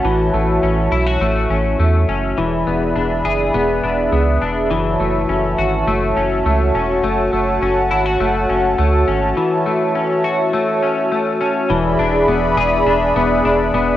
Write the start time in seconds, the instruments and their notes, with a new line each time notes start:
Already playing: clean electric guitar A3 C#4 F#4, analog synth pad F#4 A5
0.04 analog synth bass A1, clean electric guitar E3, analog synth pad C#5 E5
0.33 analog synth bass A1, clean electric guitar A3
0.63 analog synth bass A1, clean electric guitar C#4
0.91 analog synth bass B1, clean electric guitar E4
1.07 clean electric guitar F#4
1.21 analog synth bass A1, clean electric guitar A3
1.50 analog synth bass A1, clean electric guitar C#4
1.79 analog synth bass E2, clean electric guitar A3
2.08 analog synth bass F#1, clean electric guitar C#4
2.37 analog synth bass E1, clean electric guitar E3, analog synth pad G#4 D5 B5
2.67 analog synth bass E1, clean electric guitar B3
2.96 analog synth bass E1, clean electric guitar D4
3.25 analog synth bass F#1, clean electric guitar G#4
3.54 analog synth bass E1, clean electric guitar B3
3.83 analog synth bass E1, clean electric guitar D4
4.12 analog synth bass C#2, clean electric guitar B3
4.42 analog synth bass E1, clean electric guitar D4
4.71 analog synth bass F#1, clean electric guitar E3, analog synth pad F#4 C#5 A5
5.00 analog synth bass F#1, clean electric guitar A3
5.29 analog synth bass F#1, clean electric guitar C#4
5.58 analog synth bass G#1, clean electric guitar F#4
5.87 analog synth bass F#1, clean electric guitar A3
6.16 analog synth bass F#1, clean electric guitar C#4
6.45 analog synth bass C#2, clean electric guitar A3
6.74 analog synth bass E1, clean electric guitar C#4
7.03 analog synth bass F#1, clean electric guitar A3, analog synth pad F#5
7.33 analog synth bass F#1, clean electric guitar A3
7.62 analog synth bass F#1, clean electric guitar C#4
7.91 analog synth bass G#1, clean electric guitar E4
8.06 clean electric guitar F#4
8.20 analog synth bass F#1, clean electric guitar A3
8.49 analog synth bass F#1, clean electric guitar C#4
8.78 analog synth bass D2, clean electric guitar A3
9.08 analog synth bass G#1, clean electric guitar C#4
9.37 clean electric guitar E3, analog synth pad C#5 E5
9.66 clean electric guitar A3
9.95 clean electric guitar C#4
10.24 clean electric guitar F#4
10.53 clean electric guitar A3
10.82 clean electric guitar C#4
11.12 clean electric guitar A3
11.41 clean electric guitar C#4
11.69 analog synth bass E1, clean electric guitar E3, analog synth pad G#4 D5 E5 B5
11.99 analog synth bass E1, clean electric guitar D4
12.28 analog synth bass E1, clean electric guitar B3
12.57 analog synth bass E1, clean electric guitar G#4
12.86 analog synth bass E1, clean electric guitar D4
13.16 analog synth bass E1, clean electric guitar B3
13.45 analog synth bass E1, clean electric guitar D4
13.73 analog synth bass E1, clean electric guitar B3